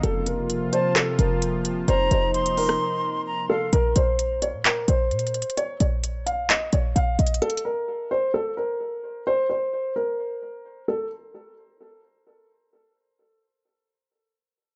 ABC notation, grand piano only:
X:1
M:4/4
L:1/8
Q:1/4=130
K:Bbm
V:1 name="Grand piano"
=A B2 c A B3 | c c2 B4 =A | B c2 d B c3 | d d2 f e d f e |
=A B2 c A B3 | c c2 B4 =A | z8 | z8 |]